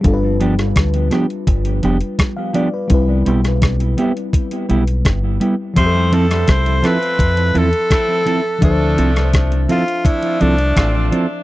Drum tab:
HH |x-xxxxxxxxxxx-x-|x-xxxxxxxxxxx-x-|x-xxxxxxxxxxx-x-|x-xxxxxxxxxxx-x-|
SD |---rr-r-----r---|---rr-------r---|---rr-r-----r---|---rr-------r---|
BD |o---o---o---o---|o---o---o---o---|o---o---o---o---|o---o---o---o---|